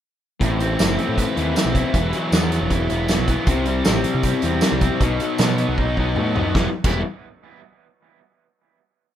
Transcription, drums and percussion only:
0.41 kick, closed hi-hat
0.60 closed hi-hat
0.79 snare, closed hi-hat, tambourine
0.98 closed hi-hat
1.18 kick, closed hi-hat
1.37 closed hi-hat
1.56 snare, closed hi-hat, tambourine
1.75 kick, closed hi-hat
1.94 kick, closed hi-hat
2.13 closed hi-hat
2.32 snare, closed hi-hat, tambourine
2.52 closed hi-hat
2.70 kick, closed hi-hat
2.90 closed hi-hat
3.08 snare, closed hi-hat, tambourine
3.28 kick, closed hi-hat
3.47 kick, closed hi-hat
3.65 closed hi-hat
3.85 snare, closed hi-hat, tambourine
4.04 closed hi-hat
4.23 kick, closed hi-hat
4.42 closed hi-hat
4.61 snare, closed hi-hat, tambourine
4.81 kick, closed hi-hat
5.01 kick, closed hi-hat
5.20 closed hi-hat
5.38 snare, closed hi-hat, tambourine
5.58 closed hi-hat
5.78 kick, high tom
5.97 kick
6.16 mid tom
6.36 floor tom
6.55 kick, snare
6.84 kick, crash

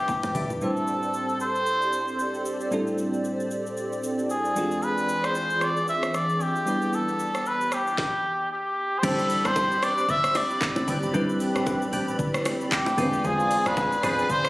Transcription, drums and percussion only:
0.08 kick, high tom, high bongo, shaker
0.23 low bongo, shaker
0.35 mid tom, open hi-hat, low conga, shaker
0.50 floor tom, shaker
0.61 shaker
0.77 shaker
0.87 shaker
1.03 shaker
1.14 shaker
1.29 shaker
1.40 shaker
1.55 shaker
1.66 shaker
1.82 shaker
1.93 shaker
2.08 shaker
2.19 shaker
2.34 shaker
2.45 shaker
2.60 shaker
2.72 shaker
2.87 shaker
2.98 shaker
3.14 shaker
3.24 shaker
3.40 shaker
3.51 shaker
3.66 shaker
3.77 shaker
3.92 shaker
4.03 shaker
4.19 shaker
4.30 shaker
4.45 shaker
4.56 shaker
4.71 shaker
4.82 shaker
4.98 shaker
5.09 shaker
5.24 cross-stick, shaker
5.35 shaker
5.50 shaker
5.61 cross-stick, shaker
5.77 shaker
5.88 shaker
6.03 cross-stick, shaker
6.14 cross-stick, shaker
6.29 shaker
6.40 shaker
6.56 shaker
6.67 shaker
6.82 shaker
6.93 shaker
7.08 shaker
7.19 shaker
7.35 cross-stick, shaker
7.46 shaker
7.61 shaker
7.72 cross-stick, shaker
7.87 shaker
7.98 kick, snare
9.03 kick, crash, low conga, shaker
9.19 shaker
9.30 open hi-hat, shaker
9.45 cross-stick, high bongo, shaker
9.56 kick, high bongo, shaker
9.71 shaker
9.83 cross-stick, open hi-hat, shaker
9.98 shaker
10.09 kick, low conga, shaker
10.24 cross-stick, shaker
10.35 cross-stick, open hi-hat, low bongo, shaker
10.50 shaker
10.61 kick, clap, high bongo, shaker
10.76 low bongo, shaker
10.88 open hi-hat, low conga, shaker
11.03 shaker
11.14 kick, low conga, shaker
11.29 shaker
11.40 open hi-hat, shaker
11.55 cross-stick, high bongo, shaker
11.66 kick, high bongo, shaker
11.82 shaker
11.93 open hi-hat, shaker
12.08 shaker
12.19 kick, low conga, shaker
12.34 cross-stick, shaker
12.45 cross-stick, open hi-hat, low bongo, shaker
12.61 shaker
12.71 kick, clap, high bongo, shaker
12.86 low bongo, shaker
12.98 open hi-hat, low conga, shaker
13.13 shaker
13.24 kick, low conga, shaker
13.40 shaker
13.51 open hi-hat, shaker
13.66 cross-stick, high bongo, shaker
13.77 kick, high bongo, shaker
13.92 shaker
14.03 cross-stick, open hi-hat, shaker
14.19 shaker
14.29 kick, low conga, shaker
14.45 cross-stick, shaker

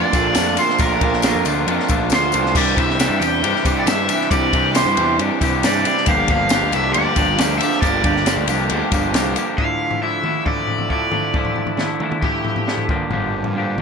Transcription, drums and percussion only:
0.13 kick, ride, tambourine
0.35 snare, ride, tambourine
0.57 ride, tambourine
0.69 snare
0.78 kick, ride, tambourine
1.01 kick, ride
1.13 snare
1.22 snare, ride, tambourine
1.45 ride, tambourine
1.68 ride, tambourine
1.80 snare
1.88 kick, ride, tambourine
2.10 snare, ride, tambourine
2.32 ride, tambourine
2.46 snare
2.55 kick, tambourine, crash
2.77 kick, ride, tambourine
2.90 snare
2.99 snare, ride, tambourine
3.22 ride, tambourine
3.44 ride, tambourine
3.56 snare
3.65 kick, ride, tambourine
3.87 snare, ride, tambourine
4.09 ride, tambourine
4.21 snare
4.31 kick, ride, tambourine
4.53 kick, ride, tambourine
4.75 snare, ride, tambourine
4.97 ride
5.19 ride, tambourine
5.41 kick, ride, tambourine
5.63 snare, ride, tambourine
5.85 ride, tambourine
5.97 snare
6.06 kick, ride, tambourine
6.28 kick, ride, tambourine
6.49 snare, ride, tambourine
6.72 ride, tambourine
6.94 ride, tambourine
7.16 kick, ride, tambourine
7.38 snare, ride, tambourine
7.61 ride, tambourine
7.73 snare
7.82 kick, ride, tambourine
8.04 kick, ride, tambourine
8.16 snare
8.26 snare, ride, tambourine
8.48 ride, tambourine
8.70 ride, tambourine
8.92 kick, ride, tambourine
9.14 snare, ride, tambourine
9.36 ride, tambourine
9.58 kick, floor tom
9.91 floor tom
10.24 mid tom
10.46 kick, floor tom
10.67 floor tom
10.78 floor tom
10.90 kick
11.12 floor tom, mid tom
11.34 kick, floor tom
11.45 floor tom
11.56 floor tom
11.67 floor tom
11.77 snare, mid tom
12.00 mid tom
12.12 mid tom
12.22 kick, floor tom
12.45 floor tom
12.56 floor tom
12.68 snare
12.77 floor tom
12.89 kick, floor tom, mid tom
13.11 floor tom
13.44 floor tom
13.78 mid tom

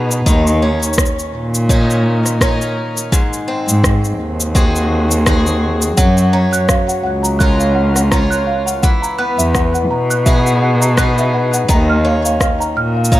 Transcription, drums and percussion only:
0.11 shaker
0.26 kick, shaker
0.47 shaker
0.83 shaker
0.93 shaker
0.98 kick, cross-stick, shaker
1.06 shaker
1.19 shaker
1.55 shaker
1.69 kick, shaker
1.90 shaker
2.26 cross-stick, shaker
2.41 kick, cross-stick, shaker
2.62 shaker
2.97 shaker
3.12 kick, shaker
3.33 shaker
3.69 shaker
3.84 kick, cross-stick, shaker
4.04 shaker
4.40 shaker
4.55 kick, shaker
4.76 shaker
5.11 shaker
5.26 kick, cross-stick, shaker
5.47 shaker
5.82 shaker
5.98 kick, shaker
6.18 shaker
6.53 shaker
6.69 kick, cross-stick, shaker
6.89 shaker
7.25 shaker
7.40 kick, shaker
7.60 shaker
7.96 cross-stick, shaker
8.12 kick, cross-stick, shaker
8.32 shaker
8.68 shaker
8.83 kick, shaker
9.04 shaker
9.39 shaker
9.55 kick, cross-stick, shaker
9.75 shaker
10.11 shaker
10.26 kick, shaker
10.47 shaker
10.82 shaker
10.97 kick, cross-stick, shaker
11.18 shaker
11.54 shaker
11.69 kick, shaker
12.25 shaker
12.40 kick, cross-stick, shaker
12.61 shaker
13.05 shaker
13.12 kick, shaker

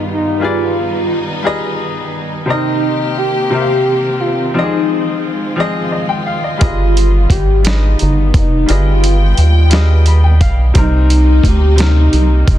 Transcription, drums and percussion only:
6.61 kick, closed hi-hat
6.97 closed hi-hat
7.30 kick, closed hi-hat
7.65 snare, closed hi-hat
7.99 closed hi-hat
8.34 kick, closed hi-hat
8.69 closed hi-hat
9.04 closed hi-hat
9.37 closed hi-hat
9.71 snare, closed hi-hat
10.06 closed hi-hat
10.41 kick, closed hi-hat
10.75 kick, closed hi-hat
11.10 closed hi-hat
11.44 kick, closed hi-hat
11.78 snare, closed hi-hat
12.13 closed hi-hat
12.48 kick, closed hi-hat

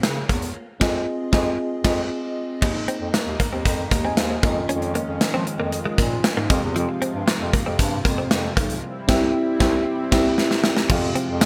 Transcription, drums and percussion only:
0.03 snare, closed hi-hat
0.29 kick, closed hi-hat
0.42 closed hi-hat
0.81 kick, snare, crash
1.33 kick, snare
1.84 kick, snare, crash
2.62 kick, crash
2.88 closed hi-hat
3.14 snare, closed hi-hat
3.40 kick, closed hi-hat
3.65 kick, closed hi-hat
3.91 kick, closed hi-hat
4.17 snare, closed hi-hat
4.43 kick, closed hi-hat
4.69 closed hi-hat
4.82 closed hi-hat
4.95 closed hi-hat
5.21 snare, closed hi-hat
5.47 closed hi-hat
5.72 closed hi-hat
5.98 kick, closed hi-hat
6.24 snare, closed hi-hat
6.50 kick, closed hi-hat
6.76 closed hi-hat
7.02 closed hi-hat
7.28 snare, closed hi-hat
7.53 kick, closed hi-hat
7.79 kick, closed hi-hat
8.05 kick, closed hi-hat
8.31 snare, closed hi-hat
8.57 kick, closed hi-hat
8.70 closed hi-hat
9.09 kick, snare, crash
9.60 kick, snare
10.12 kick, snare, crash
10.38 snare
10.51 snare
10.64 snare
10.77 snare
10.89 kick, crash
11.16 closed hi-hat
11.41 snare, closed hi-hat, tambourine

